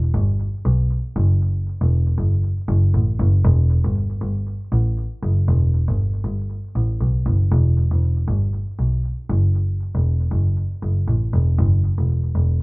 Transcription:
0.14 G1
0.65 B1
1.16 F#1
1.81 E1
2.18 F#1
2.69 F#1
2.94 A1
3.20 F#1
3.45 E1
3.85 G1
4.21 G1
4.72 A1
5.23 F#1
5.48 E1
5.88 G1
6.25 G1
6.75 A1
7.01 B1
7.26 F#1
7.52 E1
7.92 E1
8.28 G1
8.79 B1
9.30 F#1
9.95 E1
10.32 F#1
10.82 F#1
11.08 A1
11.33 E1
11.59 F#1
11.98 E1
12.35 E1

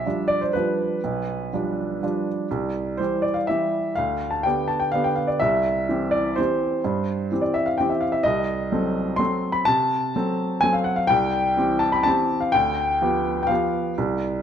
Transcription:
Already playing: E5
0.06 F3 G3 D4
0.28 D5
0.41 C5
0.53 F3 G3 D4 B4
1.04 B1
1.53 F3 G3 D4
2.03 F3 G3 D4
2.51 C2
2.97 E3 G3 G4 C5
3.22 D5
3.34 F5
3.47 E3 G3 G4 E5
3.96 D2 F5
4.31 A5
4.43 D3 B3 G4 G5
4.68 A5
4.80 G5
4.92 D3 B3 G4 F5
5.04 G5
5.16 F5
5.27 D5
5.40 C2 E5
5.89 E3 C4 G4
6.11 D5
6.36 E3 C4 G4 C5
6.84 G2
7.32 E3 C4 G4
7.41 D5
7.54 E5
7.66 F5
7.78 E3 C4 G4 G5
7.90 E5
8.01 F5
8.12 E5
8.23 C2 D#5
8.72 F#3 C4 A4
9.16 F#3 C4 A4 C6
9.52 B5
9.65 C3 A5
10.16 F#3 C4 A4
10.61 F#3 C4 A4 G#5
10.73 F5
10.84 F#5
10.96 F5
11.07 C2 G5
11.57 E3 C4 G4
11.79 A5
11.92 B5
12.03 E3 C4 G4 A5
12.40 F5
12.52 D2 G5
13.02 F3 B3 G4
13.43 G5
13.47 F3 B3 G4 F5
13.98 C2

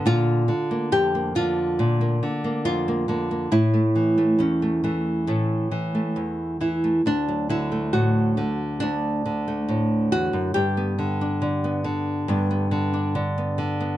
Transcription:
Already playing: D3
0.06 A#2 F4
0.48 D3
0.71 A#3
0.92 F2 G4
1.15 A#3
1.35 D3 F4
1.79 A#2
2.01 A#3
2.23 D3
2.44 A#3
2.65 F2 F4
2.88 A#3
3.08 D3 A#3
3.31 A#3
3.52 A2 E4
3.74 A3
3.95 E3
4.18 A3
4.39 E2 C#4
4.62 A3
4.84 E3 A3
5.27 A2 A3
5.71 E3
5.95 A3
6.16 E2
6.61 E3 E4
6.84 A3
7.06 D2 D4
7.28 F#3
7.49 D3 E4
7.72 A3
7.93 A2 F#4
8.37 D3 A3
8.80 D2 D4
9.26 D3
9.48 A3
9.69 A2
10.12 E2 F#4
10.33 F#2
10.54 G2 G4
10.77 B3
10.99 D3
11.21 D4
11.42 D3
11.64 B3
11.84 D3
12.28 G2 B3 D4
12.51 B3
12.71 D3
12.94 D4
13.15 D3
13.38 B3
13.58 D3
13.81 B3

